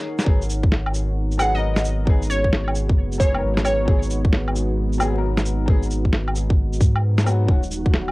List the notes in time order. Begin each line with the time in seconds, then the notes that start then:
Already playing: D#3 C#4 D#4 G#4 A#4 C#5 F#5
0.19 snare, shaker
0.24 G#1 F#3 G#3 B3 D#4 F#4, kick
0.28 G#4
0.42 shaker
0.50 shaker
0.63 kick
0.72 snare
0.86 low woodblock
0.94 shaker
1.31 shaker
1.38 F#3 B3 G#4 F#5, low woodblock, shaker
1.50 F#3
1.54 B3 A#4 D#5
1.76 snare, shaker
1.85 shaker
2.05 G#1 F#3 B3 G#4, kick
2.22 shaker
2.30 C#5, shaker
2.44 kick
2.53 snare
2.68 low woodblock
2.75 shaker
2.89 kick
2.97 F#1
3.12 shaker
3.18 F#3 B3 G#4 C#5, kick, shaker
3.31 F#3, low woodblock
3.35 B3 A#4
3.43 G#1
3.57 snare, shaker
3.65 C#5, low woodblock, shaker
3.85 G#1 F#3 B3 G#4, kick
4.02 shaker
4.10 shaker
4.25 kick
4.33 snare
4.48 low woodblock
4.56 shaker
4.93 shaker
4.98 F#3 B3, low woodblock, shaker
5.02 G#4
5.10 F#3
5.14 B3
5.18 A#4
5.37 snare, shaker
5.45 shaker
5.66 G#1 F#3 B3 G#4, kick
5.83 shaker
5.91 shaker
6.05 kick
6.13 snare
6.28 low woodblock
6.35 shaker
6.50 kick
6.73 shaker
6.81 G#2, kick, shaker
6.96 low woodblock
7.18 snare, shaker
7.24 F#3 B3, low woodblock, shaker
7.28 F#4
7.47 D#1 D#3 F#3 C#4 F#4 A#4 C#5 F#5, kick
7.51 F#4
7.63 shaker
7.71 shaker
7.86 kick
7.93 snare
8.08 low woodblock